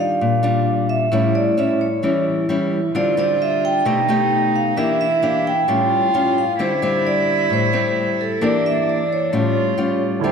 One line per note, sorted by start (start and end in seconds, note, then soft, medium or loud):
0.00 0.18 D#3 medium
0.00 0.40 G3 medium
0.00 0.40 D4 medium
0.00 0.40 F4 medium
0.00 0.92 F5 medium
0.21 1.10 A#2 medium
0.43 1.08 G3 medium
0.43 1.08 D4 medium
0.43 1.08 F4 medium
0.89 1.36 E5 medium
1.12 2.01 A2 medium
1.12 1.54 G3 medium
1.12 1.54 C#4 medium
1.12 1.54 E4 medium
1.35 1.56 D5 medium
1.57 1.87 G3 soft
1.57 1.87 C#4 medium
1.57 1.87 E4 medium
1.57 1.81 E5 medium
1.81 2.23 C#5 medium
2.03 2.92 E3 medium
2.03 2.45 G3 soft
2.03 2.45 C#4 medium
2.03 2.45 E4 medium
2.49 2.79 G3 medium
2.49 2.80 C#4 soft
2.49 2.80 E4 medium
2.95 3.83 D3 medium
2.95 3.13 G3 soft
2.95 3.14 C4 medium
2.95 3.87 F4 medium
2.95 3.14 F4 medium
2.95 3.18 D5 medium
3.17 3.83 G3 medium
3.17 3.84 C4 medium
3.17 3.84 F4 medium
3.17 3.39 D5 medium
3.42 3.64 E5 medium
3.65 4.57 G5 medium
3.85 4.74 B2 medium
3.85 3.98 A3 medium
3.85 3.99 D#4 medium
3.85 4.78 D#4 loud
3.85 3.99 G4 medium
4.09 4.73 A3 medium
4.09 4.73 D#4 medium
4.09 4.73 G4 medium
4.56 4.65 F5 medium
4.77 5.65 E3 medium
4.77 5.06 A#3 soft
4.77 5.06 D4 medium
4.77 5.69 E4 loud
4.77 5.06 G4 medium
4.77 5.00 E5 medium
5.01 5.23 E5 medium
5.22 5.52 A#3 medium
5.22 5.52 D4 soft
5.22 5.52 G4 medium
5.22 5.46 F5 medium
5.47 6.40 G5 medium
5.68 6.57 A2 medium
5.68 6.10 G3 medium
5.68 6.10 C#4 soft
5.68 6.58 F4 loud
5.68 6.10 F4 soft
6.14 6.44 G3 medium
6.14 6.44 C#4 medium
6.14 6.44 F4 medium
6.38 6.58 F5 medium
6.59 7.48 D3 medium
6.59 6.72 G3 soft
6.59 6.72 C4 medium
6.59 8.43 E4 loud
6.59 6.73 F4 medium
6.59 6.81 C5 medium
6.82 7.69 G3 medium
6.82 7.70 C4 medium
6.82 7.06 C5 medium
7.07 7.48 D5 medium
7.50 8.39 A2 medium
7.50 7.74 C5 medium
7.73 8.38 G3 medium
7.73 8.38 C4 medium
7.73 8.21 C5 medium
8.21 8.41 A4 medium
8.41 9.30 E3 medium
8.41 9.02 A#3 medium
8.41 9.33 D4 medium
8.41 9.03 D4 medium
8.41 9.03 G4 medium
8.41 8.66 D5 medium
8.66 8.88 E5 medium
8.89 9.09 D5 medium
9.13 9.98 C#5 medium
9.32 10.21 A2 medium
9.32 9.75 G3 soft
9.32 9.75 C#4 medium
9.32 10.00 F4 loud
9.32 9.75 F4 medium
9.78 10.21 G3 soft
9.78 10.22 C#4 medium
9.78 10.22 F4 medium
10.20 10.32 D3 soft
10.20 10.32 E4 soft
10.20 10.32 E4 medium
10.20 10.32 A4 soft
10.24 10.32 D3 medium
10.24 10.32 G3 medium
10.24 10.32 C4 soft
10.24 10.32 F4 soft
10.24 10.32 C5 soft
10.24 10.32 C5 medium
10.24 10.32 E5 soft
10.24 10.32 G5 soft